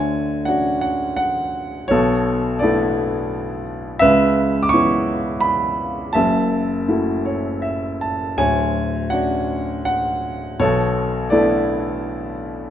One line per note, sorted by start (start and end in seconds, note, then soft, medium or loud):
0.00 1.86 D2 medium
0.00 1.86 D3 medium
0.00 0.79 C#5 medium
0.00 0.49 G#5 medium
0.45 1.86 C#4 soft
0.45 1.86 D4 soft
0.45 1.87 F#4 medium
0.45 0.80 F#5 medium
0.81 1.15 F#5 medium
1.16 1.91 F#5 medium
1.88 3.98 B1 medium
1.88 3.98 B2 medium
1.88 2.60 A4 medium
1.88 2.62 C#5 medium
2.59 3.98 A3 medium
2.59 3.98 B3 soft
2.59 3.63 A4 soft
2.59 3.61 D5 medium
2.63 3.99 D4 soft
2.63 3.99 E4 medium
3.99 6.11 C#2 medium
3.99 6.11 C#3 medium
3.99 5.03 B4 medium
3.99 4.66 E5 loud
4.63 4.70 D6 medium
4.69 6.11 B3 soft
4.69 5.44 C#6 loud
4.73 6.11 C#4 soft
4.73 6.11 E4 medium
5.41 6.16 B5 medium
6.13 8.34 F#1 medium
6.13 8.34 F#2 medium
6.13 7.61 E5 medium
6.13 7.96 A5 medium
6.88 8.34 A3 soft
6.88 8.34 E4 soft
6.88 8.34 F#4 soft
7.25 7.61 C#5 medium
7.62 7.98 E5 medium
8.01 8.35 A5 medium
8.37 10.56 D1 soft
8.37 10.57 D2 medium
8.37 9.45 C#5 medium
8.37 9.14 G#5 medium
9.10 10.57 C#4 soft
9.10 10.57 D4 soft
9.10 10.57 F#4 soft
9.10 9.84 F#5 medium
9.85 10.62 F#5 medium
10.59 12.68 B1 medium
10.59 12.67 B2 medium
10.59 11.31 A4 medium
10.59 11.28 C#5 loud
11.30 12.68 A3 medium
11.30 12.68 B3 soft
11.30 12.68 D4 soft
11.30 12.68 E4 medium
11.30 12.32 A4 medium
11.30 12.31 D5 medium